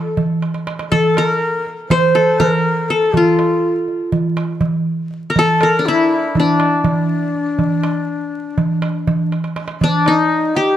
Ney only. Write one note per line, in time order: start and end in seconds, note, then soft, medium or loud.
0.00 0.16 A4 medium
0.91 1.16 A4 medium
1.14 1.65 A#4 medium
1.89 2.40 C5 medium
2.39 2.90 A#4 medium
2.89 3.18 A4 medium
3.17 3.71 F4 medium
5.36 5.63 A4 medium
5.61 5.87 A#4 medium
5.85 6.39 E4 medium
6.37 9.33 D4 medium
9.81 10.07 D4 medium
10.06 10.57 D#4 medium
10.56 10.77 G4 medium